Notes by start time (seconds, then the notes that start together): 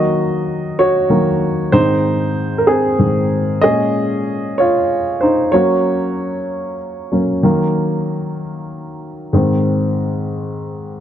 Already playing: D#3 F#3 A#3 F#4 D#5
0.79 F#4 C#5
1.10 D#3 F#3 A#3
1.72 G#2 D#3 C4 D#4 C5
2.58 A#4
2.67 C4 G#4
2.98 G#2 D#3 C4
3.62 A#2 G#3 C#4 G#4 D#5
4.58 F4 C#5
5.21 D#4 C5
5.52 F#3 A#3 C#4 F#4 C#5
7.12 F#3 A#3 C#4
7.43 D#3 F#3 A#3
9.33 G#2 D#3 C4